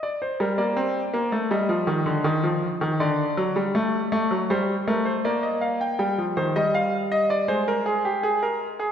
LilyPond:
<<
  \new Staff \with { instrumentName = "Grand piano" } { \time 4/4 \key g \phrygian \tempo 4 = 80 d''16 c''16 bes'16 d''4~ d''16 ees''2 | d''2 c''8 bes'16 c''16 d''16 ees''16 f''16 g''16 | g''8 c''16 ees''16 f''8 ees''16 d''16 c''16 bes'16 aes'16 g'16 aes'16 bes'8 aes'16 | }
  \new Staff \with { instrumentName = "Grand piano" } { \clef bass \time 4/4 \key g \phrygian r8 g16 bes16 c'8 bes16 a16 g16 f16 ees16 d16 ees16 f8 ees16 | d8 fis16 g16 a8 a16 fis16 g8 a8 bes4 | g16 f16 ees16 g4~ g16 aes2 | }
>>